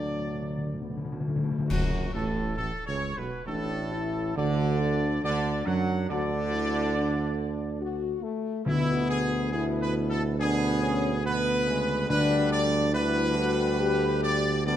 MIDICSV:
0, 0, Header, 1, 7, 480
1, 0, Start_track
1, 0, Key_signature, 2, "major"
1, 0, Tempo, 896861
1, 909, Time_signature, 4, 2, 24, 8
1, 2336, Tempo, 858369
1, 8152, End_track
2, 0, Start_track
2, 0, Title_t, "Trumpet section"
2, 0, Program_c, 0, 61
2, 0, Note_on_c, 0, 74, 92
2, 397, Note_off_c, 0, 74, 0
2, 907, Note_on_c, 0, 66, 107
2, 1127, Note_off_c, 0, 66, 0
2, 1141, Note_on_c, 0, 69, 92
2, 1362, Note_off_c, 0, 69, 0
2, 1374, Note_on_c, 0, 69, 105
2, 1523, Note_off_c, 0, 69, 0
2, 1535, Note_on_c, 0, 73, 106
2, 1683, Note_off_c, 0, 73, 0
2, 1696, Note_on_c, 0, 71, 86
2, 1854, Note_off_c, 0, 71, 0
2, 1855, Note_on_c, 0, 69, 106
2, 2316, Note_off_c, 0, 69, 0
2, 2338, Note_on_c, 0, 74, 104
2, 2800, Note_off_c, 0, 74, 0
2, 2820, Note_on_c, 0, 74, 113
2, 3045, Note_off_c, 0, 74, 0
2, 3060, Note_on_c, 0, 78, 102
2, 3301, Note_on_c, 0, 74, 118
2, 3303, Note_off_c, 0, 78, 0
2, 4479, Note_off_c, 0, 74, 0
2, 4739, Note_on_c, 0, 64, 123
2, 4965, Note_off_c, 0, 64, 0
2, 4978, Note_on_c, 0, 68, 120
2, 5206, Note_off_c, 0, 68, 0
2, 5220, Note_on_c, 0, 68, 107
2, 5294, Note_off_c, 0, 68, 0
2, 5381, Note_on_c, 0, 71, 113
2, 5455, Note_off_c, 0, 71, 0
2, 5543, Note_on_c, 0, 69, 116
2, 5616, Note_off_c, 0, 69, 0
2, 5708, Note_on_c, 0, 68, 127
2, 6165, Note_off_c, 0, 68, 0
2, 6187, Note_on_c, 0, 71, 125
2, 6638, Note_off_c, 0, 71, 0
2, 6659, Note_on_c, 0, 71, 127
2, 6880, Note_off_c, 0, 71, 0
2, 6893, Note_on_c, 0, 74, 127
2, 7117, Note_off_c, 0, 74, 0
2, 7134, Note_on_c, 0, 71, 127
2, 7832, Note_off_c, 0, 71, 0
2, 7851, Note_on_c, 0, 74, 127
2, 8076, Note_off_c, 0, 74, 0
2, 8092, Note_on_c, 0, 74, 117
2, 8152, Note_off_c, 0, 74, 0
2, 8152, End_track
3, 0, Start_track
3, 0, Title_t, "French horn section"
3, 0, Program_c, 1, 60
3, 0, Note_on_c, 1, 57, 60
3, 0, Note_on_c, 1, 62, 65
3, 374, Note_off_c, 1, 57, 0
3, 374, Note_off_c, 1, 62, 0
3, 418, Note_on_c, 1, 59, 67
3, 648, Note_off_c, 1, 59, 0
3, 670, Note_on_c, 1, 57, 71
3, 910, Note_off_c, 1, 57, 0
3, 1855, Note_on_c, 1, 62, 82
3, 2080, Note_off_c, 1, 62, 0
3, 2095, Note_on_c, 1, 64, 81
3, 2320, Note_off_c, 1, 64, 0
3, 2338, Note_on_c, 1, 66, 76
3, 2565, Note_off_c, 1, 66, 0
3, 2574, Note_on_c, 1, 62, 95
3, 3279, Note_off_c, 1, 62, 0
3, 3297, Note_on_c, 1, 66, 82
3, 3525, Note_off_c, 1, 66, 0
3, 3541, Note_on_c, 1, 64, 80
3, 3782, Note_on_c, 1, 62, 88
3, 3783, Note_off_c, 1, 64, 0
3, 4239, Note_off_c, 1, 62, 0
3, 4264, Note_on_c, 1, 66, 90
3, 4487, Note_off_c, 1, 66, 0
3, 4493, Note_on_c, 1, 57, 102
3, 4734, Note_on_c, 1, 59, 95
3, 4738, Note_off_c, 1, 57, 0
3, 5198, Note_off_c, 1, 59, 0
3, 5219, Note_on_c, 1, 64, 93
3, 5684, Note_off_c, 1, 64, 0
3, 5702, Note_on_c, 1, 62, 91
3, 5929, Note_off_c, 1, 62, 0
3, 5942, Note_on_c, 1, 61, 97
3, 6113, Note_off_c, 1, 61, 0
3, 6181, Note_on_c, 1, 59, 90
3, 6635, Note_off_c, 1, 59, 0
3, 6658, Note_on_c, 1, 62, 115
3, 7112, Note_off_c, 1, 62, 0
3, 7122, Note_on_c, 1, 64, 99
3, 7366, Note_on_c, 1, 66, 106
3, 7368, Note_off_c, 1, 64, 0
3, 7610, Note_off_c, 1, 66, 0
3, 7611, Note_on_c, 1, 67, 116
3, 8071, Note_off_c, 1, 67, 0
3, 8089, Note_on_c, 1, 59, 101
3, 8152, Note_off_c, 1, 59, 0
3, 8152, End_track
4, 0, Start_track
4, 0, Title_t, "Timpani"
4, 0, Program_c, 2, 47
4, 18, Note_on_c, 2, 50, 36
4, 57, Note_off_c, 2, 50, 0
4, 105, Note_on_c, 2, 50, 38
4, 140, Note_off_c, 2, 50, 0
4, 146, Note_on_c, 2, 50, 41
4, 181, Note_off_c, 2, 50, 0
4, 187, Note_on_c, 2, 50, 43
4, 220, Note_off_c, 2, 50, 0
4, 227, Note_on_c, 2, 50, 49
4, 260, Note_off_c, 2, 50, 0
4, 267, Note_on_c, 2, 50, 45
4, 300, Note_off_c, 2, 50, 0
4, 306, Note_on_c, 2, 50, 58
4, 342, Note_off_c, 2, 50, 0
4, 349, Note_on_c, 2, 50, 57
4, 389, Note_off_c, 2, 50, 0
4, 395, Note_on_c, 2, 50, 60
4, 428, Note_off_c, 2, 50, 0
4, 434, Note_on_c, 2, 50, 55
4, 474, Note_off_c, 2, 50, 0
4, 480, Note_on_c, 2, 50, 59
4, 513, Note_off_c, 2, 50, 0
4, 520, Note_on_c, 2, 50, 73
4, 552, Note_off_c, 2, 50, 0
4, 559, Note_on_c, 2, 50, 74
4, 594, Note_off_c, 2, 50, 0
4, 601, Note_on_c, 2, 50, 82
4, 637, Note_off_c, 2, 50, 0
4, 644, Note_on_c, 2, 50, 86
4, 678, Note_off_c, 2, 50, 0
4, 684, Note_on_c, 2, 50, 83
4, 722, Note_off_c, 2, 50, 0
4, 728, Note_on_c, 2, 50, 93
4, 763, Note_off_c, 2, 50, 0
4, 769, Note_on_c, 2, 50, 94
4, 802, Note_off_c, 2, 50, 0
4, 809, Note_on_c, 2, 50, 90
4, 842, Note_off_c, 2, 50, 0
4, 848, Note_on_c, 2, 50, 91
4, 892, Note_off_c, 2, 50, 0
4, 4739, Note_on_c, 2, 50, 116
4, 5443, Note_off_c, 2, 50, 0
4, 6660, Note_on_c, 2, 50, 104
4, 7351, Note_off_c, 2, 50, 0
4, 8152, End_track
5, 0, Start_track
5, 0, Title_t, "Trombone section"
5, 0, Program_c, 3, 61
5, 0, Note_on_c, 3, 50, 81
5, 0, Note_on_c, 3, 54, 66
5, 710, Note_off_c, 3, 54, 0
5, 711, Note_off_c, 3, 50, 0
5, 898, Note_on_c, 3, 42, 90
5, 1122, Note_off_c, 3, 42, 0
5, 1148, Note_on_c, 3, 45, 91
5, 1365, Note_off_c, 3, 45, 0
5, 1385, Note_on_c, 3, 45, 75
5, 1455, Note_off_c, 3, 45, 0
5, 1548, Note_on_c, 3, 49, 81
5, 1617, Note_off_c, 3, 49, 0
5, 1698, Note_on_c, 3, 47, 69
5, 1844, Note_off_c, 3, 47, 0
5, 1850, Note_on_c, 3, 45, 93
5, 2314, Note_off_c, 3, 45, 0
5, 2331, Note_on_c, 3, 50, 112
5, 2796, Note_off_c, 3, 50, 0
5, 2828, Note_on_c, 3, 50, 112
5, 3050, Note_off_c, 3, 50, 0
5, 3055, Note_on_c, 3, 54, 106
5, 3284, Note_off_c, 3, 54, 0
5, 3308, Note_on_c, 3, 50, 114
5, 4482, Note_off_c, 3, 50, 0
5, 4737, Note_on_c, 3, 47, 92
5, 4739, Note_on_c, 3, 59, 92
5, 5200, Note_off_c, 3, 47, 0
5, 5201, Note_off_c, 3, 59, 0
5, 5223, Note_on_c, 3, 59, 84
5, 5226, Note_on_c, 3, 47, 91
5, 5686, Note_off_c, 3, 59, 0
5, 5687, Note_off_c, 3, 47, 0
5, 5709, Note_on_c, 3, 47, 98
5, 5709, Note_on_c, 3, 59, 93
5, 6165, Note_off_c, 3, 47, 0
5, 6165, Note_off_c, 3, 59, 0
5, 6182, Note_on_c, 3, 47, 100
5, 6184, Note_on_c, 3, 59, 96
5, 6405, Note_off_c, 3, 47, 0
5, 6406, Note_off_c, 3, 59, 0
5, 6417, Note_on_c, 3, 56, 92
5, 6418, Note_on_c, 3, 49, 93
5, 6641, Note_off_c, 3, 49, 0
5, 6651, Note_on_c, 3, 55, 108
5, 6653, Note_on_c, 3, 50, 108
5, 6657, Note_off_c, 3, 56, 0
5, 7120, Note_off_c, 3, 50, 0
5, 7121, Note_off_c, 3, 55, 0
5, 7127, Note_on_c, 3, 50, 101
5, 7128, Note_on_c, 3, 55, 110
5, 8068, Note_off_c, 3, 50, 0
5, 8068, Note_off_c, 3, 55, 0
5, 8095, Note_on_c, 3, 50, 110
5, 8097, Note_on_c, 3, 55, 107
5, 8152, Note_off_c, 3, 50, 0
5, 8152, Note_off_c, 3, 55, 0
5, 8152, End_track
6, 0, Start_track
6, 0, Title_t, "Tuba"
6, 0, Program_c, 4, 58
6, 0, Note_on_c, 4, 38, 68
6, 712, Note_off_c, 4, 38, 0
6, 910, Note_on_c, 4, 30, 77
6, 1128, Note_off_c, 4, 30, 0
6, 1145, Note_on_c, 4, 33, 88
6, 1364, Note_off_c, 4, 33, 0
6, 1381, Note_on_c, 4, 33, 83
6, 1452, Note_off_c, 4, 33, 0
6, 1538, Note_on_c, 4, 37, 84
6, 1684, Note_off_c, 4, 37, 0
6, 1696, Note_on_c, 4, 35, 65
6, 1767, Note_off_c, 4, 35, 0
6, 1854, Note_on_c, 4, 33, 82
6, 2316, Note_off_c, 4, 33, 0
6, 2339, Note_on_c, 4, 38, 109
6, 2800, Note_off_c, 4, 38, 0
6, 2824, Note_on_c, 4, 38, 99
6, 3047, Note_off_c, 4, 38, 0
6, 3065, Note_on_c, 4, 42, 101
6, 3289, Note_off_c, 4, 42, 0
6, 3306, Note_on_c, 4, 38, 101
6, 4482, Note_off_c, 4, 38, 0
6, 4740, Note_on_c, 4, 38, 98
6, 6637, Note_off_c, 4, 38, 0
6, 6661, Note_on_c, 4, 38, 106
6, 8152, Note_off_c, 4, 38, 0
6, 8152, End_track
7, 0, Start_track
7, 0, Title_t, "Drums"
7, 910, Note_on_c, 9, 35, 78
7, 910, Note_on_c, 9, 49, 66
7, 964, Note_off_c, 9, 35, 0
7, 964, Note_off_c, 9, 49, 0
7, 8152, End_track
0, 0, End_of_file